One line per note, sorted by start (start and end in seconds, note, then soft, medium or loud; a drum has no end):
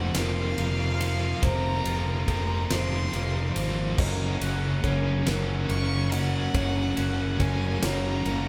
0.00 0.16 F2 loud
0.00 0.15 C3 medium
0.00 0.14 F3 medium
0.00 0.15 F3 medium
0.00 3.95 F3 medium
0.00 0.15 A#3 medium
0.00 0.13 C4 medium
0.00 3.95 C4 medium
0.00 1.43 F4 medium
0.00 3.95 A#4 medium
0.00 0.15 D#5 medium
0.00 0.16 F#5 loud
0.15 0.53 F1 loud
0.15 1.01 F2 medium
0.15 0.56 C3 medium
0.15 0.57 F3 medium
0.15 0.58 A#3 loud
0.15 0.58 C4 loud
0.15 1.00 A#4 medium
0.15 1.44 F5 loud
0.15 snare loud
0.15 ride loud
0.57 1.33 F1 medium
0.57 1.42 C3 medium
0.57 1.42 F3 medium
0.57 1.43 A#3 medium
0.57 1.43 C4 medium
0.57 ride medium
0.98 2.70 F3 medium
0.98 1.42 F3 medium
0.98 1.44 A#3 medium
0.98 1.44 C4 medium
0.98 1.43 F5 medium
0.98 ride medium
1.42 1.80 F1 loud
1.42 2.28 F2 medium
1.42 2.26 C3 loud
1.42 1.85 F3 medium
1.42 1.85 A#3 loud
1.42 1.84 C4 loud
1.42 2.28 C5 loud
1.42 2.27 A#5 loud
1.42 kick loud
1.42 ride loud
1.85 2.23 F1 loud
1.85 2.26 F3 medium
1.85 2.27 A#3 medium
1.85 2.27 C4 medium
1.85 3.99 F4 medium
1.85 ride medium
2.27 2.65 F1 medium
2.27 2.70 C3 medium
2.27 2.70 F3 medium
2.27 2.70 A#3 medium
2.27 2.68 C4 medium
2.27 2.71 A#4 medium
2.27 2.73 A#5 loud
2.27 kick medium
2.27 ride medium
2.70 3.08 F1 medium
2.70 3.56 F2 medium
2.70 3.11 C3 medium
2.70 3.11 F3 medium
2.70 3.13 A#3 medium
2.70 3.13 C4 medium
2.70 3.55 C5 medium
2.70 3.67 C6 loud
2.70 snare loud
2.70 ride loud
3.12 3.51 F1 medium
3.12 3.95 C3 medium
3.12 3.96 F3 medium
3.12 3.98 A#3 medium
3.12 3.96 C4 medium
3.12 ride medium
3.54 3.94 G#1 medium
3.54 3.99 F3 medium
3.54 3.97 F3 medium
3.54 3.99 A#3 medium
3.54 3.95 C4 medium
3.54 3.99 C5 medium
3.54 ride medium
3.98 4.36 F#1 loud
3.98 5.27 F#2 loud
3.98 4.82 C#3 loud
3.98 8.48 F#3 medium
3.98 4.42 F#3 medium
3.98 4.41 A#3 loud
3.98 8.48 C#4 medium
3.98 4.40 C#4 loud
3.98 8.48 A#4 medium
3.98 4.84 D#5 medium
3.98 kick loud
3.98 crash loud
4.40 4.79 F#1 medium
4.40 4.83 F#3 medium
4.40 4.84 A#3 medium
4.40 4.84 C#4 medium
4.40 6.55 F#4 medium
4.40 ride medium
4.83 5.21 F#1 loud
4.83 5.26 C#3 medium
4.83 5.26 F#3 medium
4.83 5.25 A#3 medium
4.83 5.25 C#4 medium
4.83 5.27 C#5 medium
4.83 kick medium
4.83 ride medium
5.26 5.64 F#1 loud
5.26 6.13 F#2 medium
5.26 5.68 C#3 medium
5.26 5.68 F#3 medium
5.26 5.69 A#3 medium
5.26 5.69 C#4 medium
5.26 6.12 A#4 medium
5.26 snare loud
5.26 ride loud
5.69 6.44 F#1 medium
5.69 6.54 C#3 medium
5.69 6.54 F#3 medium
5.69 6.54 A#3 medium
5.69 6.55 C#4 medium
5.69 6.14 C#6 loud
5.69 ride medium
6.11 7.82 F#3 medium
6.11 6.54 F#3 medium
6.11 6.55 A#3 medium
6.11 6.55 C#4 medium
6.11 6.55 D#5 medium
6.11 7.42 F#5 loud
6.11 ride medium
6.54 6.92 F#1 loud
6.54 7.40 F#2 medium
6.54 7.38 C#3 medium
6.54 6.97 F#3 loud
6.54 6.97 A#3 loud
6.54 6.95 C#4 loud
6.54 7.40 C#5 loud
6.54 kick loud
6.54 ride loud
6.97 7.35 F#1 medium
6.97 7.39 F#3 medium
6.97 7.40 A#3 medium
6.97 7.40 C#4 medium
6.97 8.48 F#4 medium
6.97 ride medium
7.40 7.78 F#1 loud
7.40 7.83 C#3 medium
7.40 7.82 F#3 medium
7.40 7.82 A#3 medium
7.40 7.81 C#4 medium
7.40 7.83 A#4 medium
7.40 7.85 G#5 loud
7.40 kick medium
7.40 ride medium
7.82 8.20 F#1 loud
7.82 8.48 F#2 medium
7.82 8.24 C#3 medium
7.82 8.25 F#3 medium
7.82 8.25 A#3 loud
7.82 8.26 C#4 loud
7.82 8.48 C#5 medium
7.82 8.48 A#5 loud
7.82 snare loud
7.82 ride loud
8.25 8.48 F#1 loud
8.25 8.48 C#3 medium
8.25 8.48 F#3 medium
8.25 8.48 A#3 medium
8.25 8.48 C#4 loud
8.25 ride medium